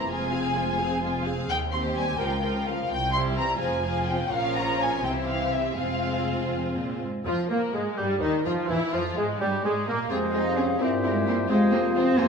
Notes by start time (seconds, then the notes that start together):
Already playing: C4
0.09 F1 F2 F3 G#3 C4 F4 C5 G#5
0.31 C4 G#4 F5
0.56 G#3 F4 C5
0.77 C4 G#4 F5
1.00 G#3 F4 C5
1.25 C4 G#4 F5
1.49 D#2 G5
1.71 C4 G4 C5 C6
1.95 G3 C4 G#5
2.17 C#2 F3 F4 A#4 G5
2.42 F3 F4 A#4
2.66 F3 A#3 F5
2.89 C2 G5
3.12 G3 E4 G4 C5 C6
3.36 E3 C4 A#5
3.59 F1 F2 F3 F4 G#4 C5 G#5
3.83 F3 F4 G#4 C5
4.07 F3 C4 G5
4.29 A#1 A#2 F3 C#4 F4 A#4 C#5 F5
4.56 A#5
4.81 G#5
5.01 C2 C3 E3 C4 E4 G4 C5 G5
5.27 F5
5.53 E5
5.75 F1 F2 G#3 C4 F4 G#4 C5 F5
6.51 F2
6.76 A#2
7.02 G#2
7.25 F2 F3 F4
7.49 A#2 A#3 A#4
7.73 G#2 G#3 G#4
7.77 G#3
7.97 G2 G3 G4
8.21 D#2 D#3 D#4
8.25 D#4
8.45 F2 F3 F4
8.68 E2 E3 E4
8.92 F2 F3 F4
8.96 F4
9.16 G#2 G#3 G#4
9.40 G2 G3 G4
9.62 G#2 G#3 G#4
9.86 A#2 A#3 A#4
10.09 F2 C3 G#3 C4 F4 G#4 C5 F5
10.33 C4 D#4 F4 G#4
10.57 C4 C#4 F4 G#4
10.79 G2 A#2 C4 E4 G4 A#4 C5 E5
11.03 G#3 C4 E4 A#4
11.27 A#3 C4 E4 A#4
11.48 F2 C3 G#3 C4 F4 G#4 C5 F5
11.72 A#3 C4 F4 C5
11.95 C4 F4 C5
12.18 F2 C3 A#3 C4 F4 C5 G#5